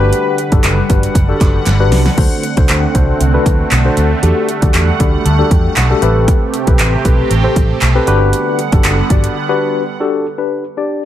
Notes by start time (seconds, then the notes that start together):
Already playing: G1 D3 G3 D4 F#4 G4 B4 F#5
0.13 closed hi-hat
0.38 closed hi-hat
0.52 G1 D4 F#4 G4 A4, kick, closed hi-hat
0.64 F#1, clap, closed hi-hat
0.89 G1 D4 F#4 G4 B4, kick, closed hi-hat
1.03 closed hi-hat
1.15 F#1, kick, closed hi-hat
1.28 D4 F#4 G4 A4
1.41 F#1, kick, clap, closed hi-hat
1.66 G1, snare, clap, closed hi-hat
1.80 D4 F#4 G4 B4
1.92 C2, snare, open hi-hat
2.06 snare
2.17 D2 A3 C4 D4 F#4 A4 C5, kick, crash
2.43 closed hi-hat
2.57 C2 D4 F#4 A4 C5, kick, closed hi-hat
2.69 D2, clap, closed hi-hat
2.94 C2 D4 F#4 A4 C5, kick, closed hi-hat
3.20 C2, closed hi-hat
3.34 D4 F#4 A4 B4
3.46 D2, kick, closed hi-hat
3.71 B1, clap, closed hi-hat
3.85 D4 F#4 A4 C5
3.97 D2, closed hi-hat
4.23 E2 G3 D4 F#4 G4 A4 F#5, closed hi-hat
4.49 closed hi-hat
4.62 D2 D4 F#4 G4 A4, kick, closed hi-hat
4.74 E2, clap, closed hi-hat
4.99 D2 D4 F#4 G4 A4 B5, kick, closed hi-hat
5.25 D2 A5, closed hi-hat
5.39 D4 F#4 G4 A4
5.51 E2 G5, kick, closed hi-hat
5.76 B1 F#5, clap, closed hi-hat
5.90 D4 F#4 G4 A4
6.02 A1 C3 C4 G4 A4 B4 E5, closed hi-hat
6.28 kick, closed hi-hat
6.54 closed hi-hat
6.67 B1 C4 G4 A4 B4, kick, closed hi-hat
6.79 A1, clap, closed hi-hat
7.05 B1 C4 G4 A4 B4, kick, closed hi-hat
7.30 A1, closed hi-hat
7.44 C4 G4 A4 C5
7.56 A1, kick, closed hi-hat
7.82 B1, clap, closed hi-hat
7.95 C4 G4 A4 B4
8.07 G1 D3 G3 B3 D4 F#4 G4 B4 F#5, closed hi-hat
8.33 closed hi-hat
8.59 closed hi-hat
8.72 G1 D4 F#4 G4 A4, kick, closed hi-hat
8.84 F#1, clap, closed hi-hat
9.10 G1 D4 F#4 G4 D5, kick, closed hi-hat
9.24 closed hi-hat
9.49 D4 F#4 G4 B4
10.00 D4 F#4 G4 A4
10.38 D4 G4 B4
10.77 D4 G4 D5